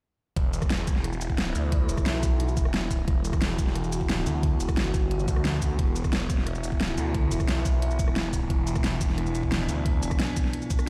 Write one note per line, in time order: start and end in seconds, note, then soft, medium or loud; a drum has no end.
0.36 1.20 E1 medium
0.36 10.89 B2 medium
0.36 10.89 E3 medium
0.36 3.07 E4 medium
0.36 kick loud
0.36 closed hi-hat medium
0.53 closed hi-hat medium
0.53 shaker medium
0.62 kick loud
0.62 cross-stick soft
0.62 shaker soft
0.70 snare loud
0.70 closed hi-hat loud
0.87 kick loud
0.87 closed hi-hat medium
0.87 shaker medium
0.96 snare soft
1.04 cross-stick soft
1.04 closed hi-hat loud
1.13 shaker soft
1.21 1.54 E1 loud
1.21 closed hi-hat medium
1.21 shaker medium
1.30 kick medium
1.38 snare loud
1.38 closed hi-hat loud
1.55 1.88 D2 medium
1.55 closed hi-hat medium
1.55 shaker medium
1.72 kick loud
1.72 closed hi-hat loud
1.89 2.05 E1 medium
1.89 closed hi-hat medium
1.89 shaker medium
1.98 kick loud
1.98 cross-stick soft
1.98 shaker soft
2.06 2.55 B1 loud
2.06 snare loud
2.06 closed hi-hat loud
2.23 kick loud
2.23 closed hi-hat medium
2.23 shaker medium
2.40 closed hi-hat loud
2.48 shaker soft
2.57 3.06 E1 loud
2.57 kick loud
2.57 closed hi-hat medium
2.57 shaker medium
2.65 cross-stick medium
2.74 snare loud
2.74 closed hi-hat medium
2.91 kick medium
2.91 closed hi-hat medium
2.91 shaker medium
3.08 3.91 E1 loud
3.08 5.78 F#4 medium
3.08 kick loud
3.08 closed hi-hat medium
3.25 closed hi-hat medium
3.25 shaker medium
3.33 kick loud
3.33 cross-stick soft
3.33 shaker soft
3.42 snare loud
3.42 closed hi-hat loud
3.58 kick loud
3.58 closed hi-hat medium
3.58 shaker medium
3.67 snare soft
3.75 cross-stick soft
3.75 closed hi-hat medium
3.84 shaker soft
3.92 4.25 E1 loud
3.92 closed hi-hat medium
3.92 shaker medium
4.01 kick medium
4.09 snare loud
4.09 closed hi-hat medium
4.26 4.59 D2 loud
4.26 closed hi-hat medium
4.26 shaker medium
4.43 kick loud
4.43 closed hi-hat medium
4.60 4.76 E1 loud
4.60 closed hi-hat medium
4.60 shaker medium
4.69 kick loud
4.69 cross-stick soft
4.69 shaker soft
4.77 5.27 G1 loud
4.77 snare loud
4.77 closed hi-hat medium
4.94 kick loud
4.94 closed hi-hat medium
4.94 shaker medium
5.11 closed hi-hat medium
5.20 shaker soft
5.28 5.78 D2 loud
5.28 kick loud
5.28 closed hi-hat medium
5.28 shaker medium
5.36 cross-stick medium
5.45 snare loud
5.45 closed hi-hat medium
5.62 kick medium
5.62 closed hi-hat medium
5.62 shaker medium
5.79 6.62 E1 medium
5.79 8.49 E4 medium
5.79 kick loud
5.79 closed hi-hat medium
5.96 closed hi-hat medium
5.96 shaker medium
6.04 kick loud
6.04 cross-stick soft
6.04 shaker soft
6.13 snare loud
6.13 closed hi-hat medium
6.30 kick loud
6.30 closed hi-hat medium
6.30 shaker medium
6.38 snare soft
6.47 cross-stick soft
6.47 closed hi-hat medium
6.55 shaker soft
6.64 6.96 E1 loud
6.64 closed hi-hat medium
6.64 shaker medium
6.72 kick medium
6.81 snare loud
6.81 closed hi-hat medium
6.97 7.30 D2 medium
6.97 closed hi-hat medium
6.97 shaker medium
7.14 kick loud
7.14 closed hi-hat medium
7.31 7.47 E1 medium
7.31 closed hi-hat medium
7.31 shaker medium
7.40 kick loud
7.40 cross-stick soft
7.40 shaker soft
7.48 7.98 B1 loud
7.48 snare loud
7.48 closed hi-hat loud
7.65 kick loud
7.65 closed hi-hat medium
7.65 shaker medium
7.82 closed hi-hat medium
7.91 shaker soft
7.99 8.49 E1 loud
7.99 kick loud
7.99 closed hi-hat medium
7.99 shaker medium
8.08 cross-stick medium
8.16 snare loud
8.16 closed hi-hat medium
8.33 kick medium
8.33 closed hi-hat medium
8.33 shaker medium
8.50 9.33 E1 medium
8.50 10.89 D4 medium
8.50 kick loud
8.50 closed hi-hat loud
8.67 closed hi-hat medium
8.67 shaker medium
8.76 kick loud
8.76 cross-stick soft
8.76 shaker soft
8.84 snare loud
8.84 closed hi-hat loud
9.01 kick loud
9.01 closed hi-hat medium
9.01 shaker medium
9.09 snare soft
9.18 cross-stick soft
9.18 closed hi-hat loud
9.26 shaker soft
9.35 9.67 E1 loud
9.35 closed hi-hat medium
9.35 shaker medium
9.43 kick medium
9.52 snare loud
9.52 closed hi-hat medium
9.69 10.01 D2 medium
9.69 closed hi-hat medium
9.69 shaker medium
9.86 kick loud
9.86 closed hi-hat loud
10.03 10.18 E1 loud
10.03 closed hi-hat medium
10.03 shaker medium
10.11 kick loud
10.11 cross-stick soft
10.11 shaker soft
10.20 snare loud
10.20 closed hi-hat loud
10.37 kick loud
10.37 closed hi-hat medium
10.37 shaker medium
10.45 snare soft
10.53 closed hi-hat loud
10.62 shaker soft
10.70 kick loud
10.70 closed hi-hat medium
10.70 shaker medium
10.79 cross-stick medium
10.79 shaker soft